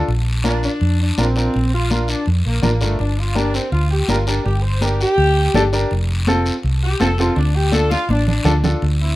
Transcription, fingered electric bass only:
0, 0, Header, 1, 2, 480
1, 0, Start_track
1, 0, Key_signature, -1, "minor"
1, 0, Tempo, 364078
1, 111, Time_signature, 4, 2, 24, 8
1, 12073, End_track
2, 0, Start_track
2, 0, Title_t, "Fingered electric bass"
2, 0, Program_c, 0, 33
2, 109, Note_on_c, 0, 34, 93
2, 878, Note_off_c, 0, 34, 0
2, 1073, Note_on_c, 0, 41, 100
2, 1457, Note_off_c, 0, 41, 0
2, 1559, Note_on_c, 0, 34, 92
2, 1940, Note_off_c, 0, 34, 0
2, 2052, Note_on_c, 0, 34, 85
2, 2812, Note_off_c, 0, 34, 0
2, 2998, Note_on_c, 0, 41, 91
2, 3187, Note_off_c, 0, 41, 0
2, 3241, Note_on_c, 0, 34, 88
2, 3453, Note_off_c, 0, 34, 0
2, 3476, Note_on_c, 0, 33, 70
2, 3690, Note_off_c, 0, 33, 0
2, 3715, Note_on_c, 0, 31, 95
2, 3929, Note_off_c, 0, 31, 0
2, 3951, Note_on_c, 0, 31, 93
2, 4719, Note_off_c, 0, 31, 0
2, 4905, Note_on_c, 0, 38, 94
2, 5291, Note_off_c, 0, 38, 0
2, 5387, Note_on_c, 0, 31, 95
2, 5772, Note_off_c, 0, 31, 0
2, 5875, Note_on_c, 0, 31, 109
2, 6641, Note_off_c, 0, 31, 0
2, 6826, Note_on_c, 0, 38, 106
2, 7211, Note_off_c, 0, 38, 0
2, 7311, Note_on_c, 0, 31, 99
2, 7694, Note_off_c, 0, 31, 0
2, 7798, Note_on_c, 0, 29, 104
2, 8562, Note_off_c, 0, 29, 0
2, 8756, Note_on_c, 0, 36, 88
2, 9137, Note_off_c, 0, 36, 0
2, 9226, Note_on_c, 0, 29, 92
2, 9611, Note_off_c, 0, 29, 0
2, 9711, Note_on_c, 0, 38, 97
2, 10478, Note_off_c, 0, 38, 0
2, 10661, Note_on_c, 0, 33, 92
2, 11048, Note_off_c, 0, 33, 0
2, 11133, Note_on_c, 0, 38, 92
2, 11523, Note_off_c, 0, 38, 0
2, 11634, Note_on_c, 0, 38, 90
2, 12073, Note_off_c, 0, 38, 0
2, 12073, End_track
0, 0, End_of_file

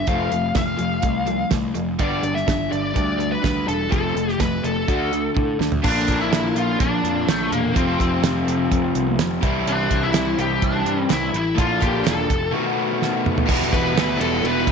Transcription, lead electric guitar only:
0, 0, Header, 1, 2, 480
1, 0, Start_track
1, 0, Tempo, 478469
1, 79, Time_signature, 4, 2, 24, 8
1, 14765, End_track
2, 0, Start_track
2, 0, Title_t, "Lead electric guitar"
2, 0, Program_c, 0, 29
2, 81, Note_on_c, 0, 77, 96
2, 561, Note_off_c, 0, 77, 0
2, 573, Note_on_c, 0, 77, 89
2, 1491, Note_off_c, 0, 77, 0
2, 2014, Note_on_c, 0, 74, 91
2, 2346, Note_off_c, 0, 74, 0
2, 2357, Note_on_c, 0, 76, 115
2, 2724, Note_off_c, 0, 76, 0
2, 2728, Note_on_c, 0, 74, 99
2, 3290, Note_off_c, 0, 74, 0
2, 3327, Note_on_c, 0, 71, 90
2, 3688, Note_off_c, 0, 71, 0
2, 3692, Note_on_c, 0, 69, 67
2, 3922, Note_off_c, 0, 69, 0
2, 3934, Note_on_c, 0, 69, 81
2, 4417, Note_off_c, 0, 69, 0
2, 4421, Note_on_c, 0, 71, 88
2, 4641, Note_off_c, 0, 71, 0
2, 4665, Note_on_c, 0, 69, 72
2, 5581, Note_off_c, 0, 69, 0
2, 5857, Note_on_c, 0, 62, 94
2, 6225, Note_off_c, 0, 62, 0
2, 6229, Note_on_c, 0, 64, 111
2, 6589, Note_off_c, 0, 64, 0
2, 6593, Note_on_c, 0, 65, 97
2, 6820, Note_off_c, 0, 65, 0
2, 6824, Note_on_c, 0, 62, 93
2, 7313, Note_on_c, 0, 57, 78
2, 7315, Note_off_c, 0, 62, 0
2, 7544, Note_off_c, 0, 57, 0
2, 7548, Note_on_c, 0, 58, 93
2, 7781, Note_off_c, 0, 58, 0
2, 7785, Note_on_c, 0, 60, 78
2, 9179, Note_off_c, 0, 60, 0
2, 9709, Note_on_c, 0, 62, 84
2, 10066, Note_on_c, 0, 64, 104
2, 10072, Note_off_c, 0, 62, 0
2, 10427, Note_off_c, 0, 64, 0
2, 10431, Note_on_c, 0, 67, 101
2, 10669, Note_off_c, 0, 67, 0
2, 10669, Note_on_c, 0, 62, 90
2, 11154, Note_off_c, 0, 62, 0
2, 11160, Note_on_c, 0, 64, 81
2, 11392, Note_off_c, 0, 64, 0
2, 11405, Note_on_c, 0, 64, 89
2, 11626, Note_off_c, 0, 64, 0
2, 11630, Note_on_c, 0, 65, 99
2, 11864, Note_off_c, 0, 65, 0
2, 11868, Note_on_c, 0, 67, 102
2, 12105, Note_off_c, 0, 67, 0
2, 12108, Note_on_c, 0, 69, 107
2, 12544, Note_off_c, 0, 69, 0
2, 13778, Note_on_c, 0, 71, 87
2, 14245, Note_off_c, 0, 71, 0
2, 14249, Note_on_c, 0, 69, 84
2, 14490, Note_off_c, 0, 69, 0
2, 14510, Note_on_c, 0, 71, 102
2, 14739, Note_off_c, 0, 71, 0
2, 14765, End_track
0, 0, End_of_file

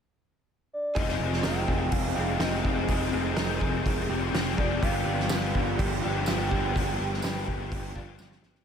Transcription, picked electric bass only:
0, 0, Header, 1, 2, 480
1, 0, Start_track
1, 0, Tempo, 483092
1, 953, Time_signature, 4, 2, 24, 8
1, 8592, End_track
2, 0, Start_track
2, 0, Title_t, "Picked electric bass"
2, 0, Program_c, 0, 34
2, 952, Note_on_c, 0, 29, 89
2, 1158, Note_off_c, 0, 29, 0
2, 1187, Note_on_c, 0, 29, 86
2, 1395, Note_off_c, 0, 29, 0
2, 1433, Note_on_c, 0, 29, 80
2, 1638, Note_off_c, 0, 29, 0
2, 1673, Note_on_c, 0, 29, 83
2, 1878, Note_off_c, 0, 29, 0
2, 1906, Note_on_c, 0, 29, 89
2, 2113, Note_off_c, 0, 29, 0
2, 2150, Note_on_c, 0, 29, 80
2, 2356, Note_off_c, 0, 29, 0
2, 2377, Note_on_c, 0, 29, 83
2, 2589, Note_off_c, 0, 29, 0
2, 2626, Note_on_c, 0, 29, 80
2, 2834, Note_off_c, 0, 29, 0
2, 2869, Note_on_c, 0, 29, 90
2, 3075, Note_off_c, 0, 29, 0
2, 3110, Note_on_c, 0, 29, 89
2, 3316, Note_off_c, 0, 29, 0
2, 3355, Note_on_c, 0, 29, 89
2, 3559, Note_off_c, 0, 29, 0
2, 3585, Note_on_c, 0, 29, 90
2, 3793, Note_off_c, 0, 29, 0
2, 3838, Note_on_c, 0, 29, 93
2, 4041, Note_off_c, 0, 29, 0
2, 4065, Note_on_c, 0, 29, 88
2, 4274, Note_off_c, 0, 29, 0
2, 4297, Note_on_c, 0, 29, 89
2, 4509, Note_off_c, 0, 29, 0
2, 4556, Note_on_c, 0, 29, 89
2, 4760, Note_off_c, 0, 29, 0
2, 4792, Note_on_c, 0, 31, 91
2, 4998, Note_off_c, 0, 31, 0
2, 5028, Note_on_c, 0, 31, 92
2, 5236, Note_off_c, 0, 31, 0
2, 5278, Note_on_c, 0, 31, 82
2, 5482, Note_off_c, 0, 31, 0
2, 5513, Note_on_c, 0, 31, 88
2, 5719, Note_off_c, 0, 31, 0
2, 5752, Note_on_c, 0, 31, 102
2, 5959, Note_off_c, 0, 31, 0
2, 6009, Note_on_c, 0, 31, 81
2, 6209, Note_off_c, 0, 31, 0
2, 6249, Note_on_c, 0, 31, 84
2, 6449, Note_off_c, 0, 31, 0
2, 6474, Note_on_c, 0, 31, 81
2, 6681, Note_off_c, 0, 31, 0
2, 6714, Note_on_c, 0, 31, 88
2, 6921, Note_off_c, 0, 31, 0
2, 6952, Note_on_c, 0, 31, 84
2, 7160, Note_off_c, 0, 31, 0
2, 7186, Note_on_c, 0, 31, 90
2, 7397, Note_off_c, 0, 31, 0
2, 7432, Note_on_c, 0, 31, 86
2, 7640, Note_off_c, 0, 31, 0
2, 7669, Note_on_c, 0, 31, 90
2, 7878, Note_off_c, 0, 31, 0
2, 7907, Note_on_c, 0, 31, 85
2, 8117, Note_off_c, 0, 31, 0
2, 8144, Note_on_c, 0, 31, 83
2, 8355, Note_off_c, 0, 31, 0
2, 8373, Note_on_c, 0, 31, 79
2, 8589, Note_off_c, 0, 31, 0
2, 8592, End_track
0, 0, End_of_file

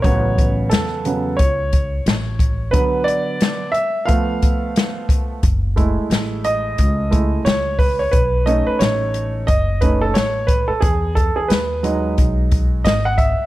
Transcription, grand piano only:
0, 0, Header, 1, 2, 480
1, 0, Start_track
1, 0, Tempo, 674157
1, 26, Time_signature, 4, 2, 24, 8
1, 9584, End_track
2, 0, Start_track
2, 0, Title_t, "Grand piano"
2, 0, Program_c, 0, 0
2, 16, Note_on_c, 0, 73, 91
2, 26, Note_on_c, 0, 49, 53
2, 30, Note_on_c, 0, 54, 54
2, 35, Note_on_c, 0, 59, 60
2, 495, Note_on_c, 0, 69, 73
2, 516, Note_off_c, 0, 73, 0
2, 740, Note_off_c, 0, 49, 0
2, 742, Note_off_c, 0, 54, 0
2, 745, Note_off_c, 0, 59, 0
2, 751, Note_on_c, 0, 49, 49
2, 752, Note_on_c, 0, 54, 44
2, 756, Note_on_c, 0, 59, 51
2, 965, Note_off_c, 0, 49, 0
2, 966, Note_off_c, 0, 54, 0
2, 968, Note_off_c, 0, 59, 0
2, 973, Note_on_c, 0, 73, 88
2, 996, Note_off_c, 0, 69, 0
2, 1911, Note_off_c, 0, 73, 0
2, 1930, Note_on_c, 0, 71, 90
2, 1941, Note_on_c, 0, 50, 54
2, 1947, Note_on_c, 0, 54, 50
2, 1949, Note_on_c, 0, 59, 64
2, 2161, Note_off_c, 0, 71, 0
2, 2165, Note_on_c, 0, 74, 101
2, 2627, Note_off_c, 0, 74, 0
2, 2635, Note_off_c, 0, 50, 0
2, 2638, Note_off_c, 0, 54, 0
2, 2639, Note_off_c, 0, 59, 0
2, 2646, Note_on_c, 0, 76, 98
2, 2887, Note_on_c, 0, 77, 97
2, 2897, Note_on_c, 0, 53, 53
2, 2901, Note_on_c, 0, 57, 54
2, 2904, Note_off_c, 0, 76, 0
2, 2906, Note_on_c, 0, 59, 58
2, 3588, Note_off_c, 0, 77, 0
2, 3833, Note_off_c, 0, 53, 0
2, 3835, Note_off_c, 0, 57, 0
2, 3838, Note_off_c, 0, 59, 0
2, 4102, Note_on_c, 0, 56, 53
2, 4103, Note_on_c, 0, 57, 48
2, 4108, Note_on_c, 0, 64, 58
2, 4589, Note_on_c, 0, 75, 99
2, 5050, Note_off_c, 0, 56, 0
2, 5051, Note_off_c, 0, 57, 0
2, 5054, Note_off_c, 0, 64, 0
2, 5060, Note_on_c, 0, 56, 46
2, 5062, Note_on_c, 0, 57, 47
2, 5065, Note_on_c, 0, 64, 53
2, 5279, Note_off_c, 0, 56, 0
2, 5280, Note_off_c, 0, 57, 0
2, 5282, Note_off_c, 0, 64, 0
2, 5303, Note_on_c, 0, 73, 89
2, 5330, Note_off_c, 0, 75, 0
2, 5528, Note_off_c, 0, 73, 0
2, 5543, Note_on_c, 0, 71, 88
2, 5691, Note_on_c, 0, 73, 81
2, 5697, Note_off_c, 0, 71, 0
2, 5777, Note_on_c, 0, 71, 86
2, 5787, Note_off_c, 0, 73, 0
2, 6005, Note_off_c, 0, 71, 0
2, 6022, Note_on_c, 0, 75, 86
2, 6026, Note_on_c, 0, 57, 57
2, 6030, Note_on_c, 0, 61, 47
2, 6034, Note_on_c, 0, 63, 56
2, 6162, Note_off_c, 0, 75, 0
2, 6170, Note_on_c, 0, 71, 90
2, 6260, Note_on_c, 0, 73, 87
2, 6267, Note_off_c, 0, 71, 0
2, 6718, Note_off_c, 0, 57, 0
2, 6720, Note_off_c, 0, 61, 0
2, 6722, Note_off_c, 0, 63, 0
2, 6743, Note_on_c, 0, 75, 98
2, 6758, Note_off_c, 0, 73, 0
2, 6984, Note_on_c, 0, 71, 77
2, 6989, Note_on_c, 0, 61, 42
2, 6990, Note_on_c, 0, 57, 49
2, 6992, Note_off_c, 0, 75, 0
2, 6993, Note_on_c, 0, 63, 54
2, 7123, Note_off_c, 0, 71, 0
2, 7131, Note_on_c, 0, 69, 84
2, 7204, Note_off_c, 0, 57, 0
2, 7204, Note_off_c, 0, 61, 0
2, 7206, Note_off_c, 0, 63, 0
2, 7220, Note_on_c, 0, 73, 90
2, 7228, Note_off_c, 0, 69, 0
2, 7454, Note_on_c, 0, 71, 83
2, 7470, Note_off_c, 0, 73, 0
2, 7603, Note_on_c, 0, 69, 75
2, 7613, Note_off_c, 0, 71, 0
2, 7693, Note_on_c, 0, 68, 79
2, 7694, Note_off_c, 0, 69, 0
2, 7923, Note_off_c, 0, 68, 0
2, 7941, Note_on_c, 0, 69, 79
2, 8088, Note_on_c, 0, 68, 77
2, 8096, Note_off_c, 0, 69, 0
2, 8176, Note_on_c, 0, 71, 72
2, 8186, Note_off_c, 0, 68, 0
2, 8423, Note_on_c, 0, 54, 55
2, 8427, Note_on_c, 0, 56, 50
2, 8433, Note_on_c, 0, 63, 59
2, 8633, Note_off_c, 0, 71, 0
2, 9116, Note_off_c, 0, 54, 0
2, 9118, Note_off_c, 0, 56, 0
2, 9121, Note_off_c, 0, 63, 0
2, 9146, Note_on_c, 0, 75, 96
2, 9284, Note_off_c, 0, 75, 0
2, 9294, Note_on_c, 0, 78, 97
2, 9382, Note_on_c, 0, 76, 89
2, 9389, Note_off_c, 0, 78, 0
2, 9584, Note_off_c, 0, 76, 0
2, 9584, End_track
0, 0, End_of_file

